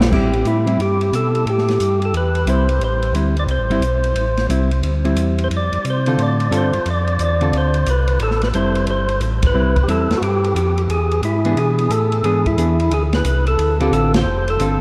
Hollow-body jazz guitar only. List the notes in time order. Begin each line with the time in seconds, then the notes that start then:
0.11 G3 C4 E4
0.66 G3 C4 E4
2.47 G3 C4 E4
3.15 G3 C4 E4
3.70 G3 C4 E4
4.49 G3 C4 E4
5.05 G3 C4 E4
6.07 D3 C4 F4 A4
6.51 D3 C4 F4 A4
7.41 D3 C4 F4 A4
8.54 G3 C4 E4
9.54 G3 C4 E4
9.88 G3 C4 E4
11.45 E3 B3 D4 G#4
12.24 E3 B3 D4 G#4
12.58 E3 B3 D4 G#4
13.80 D3 C4 F4 A4
14.60 D3 C4 F4 A4